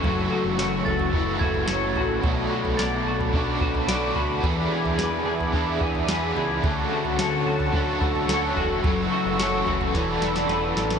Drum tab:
SD |----o-------o---|----o-------o---|----o-------o---|----o-------o---|
FT |o-----oo---o--o-|o--o---o---o--o-|o--o---o---o--o-|o--o---o---o--o-|
BD |o-------o-o-----|o-------o-o-----|o-------o-o-----|o-------o-o-----|

SD |----o---o-ooo-oo|
FT |o-----oo--------|
BD |o-------o-------|